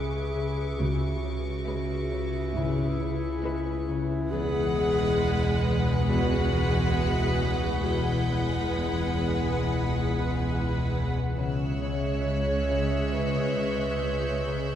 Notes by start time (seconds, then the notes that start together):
Already playing: C#2 C#3 G#3 C#4 G#4 B4 E5 C#6 D6
0.35 C#3
0.78 C#2 C#3 F#4 G#4 B4 E5
1.24 C#3
1.67 C#3 G#3 B4 E5
2.12 C#3
2.56 G#1 G#2 C#3 E4
3.00 C#3
3.44 G#3 C#4 B4 E5
3.89 C#3
4.31 E1 C#2 E2 G#3 G#4 B4 F#5 B5 F#6
4.77 E2
5.21 E2 G#5
5.66 E2
6.09 E2 G#3 F#4 B4 F#5
6.53 E2
6.97 E3
7.41 E2
7.84 E1 C#2 E2 G#3 E4 G#4 B4 F#5
7.94 G6
8.29 E2
8.73 E2
9.18 E2
9.62 E2
10.06 E2
10.50 E3
10.94 E2
11.38 C#2 C#3 G#3 G#4 C#5 E5 E6 F#6
11.82 C#3 C#5
12.26 C#3
12.70 C#3
13.13 C#3 B4 G6
13.58 C#3
14.02 C#4
14.46 C#3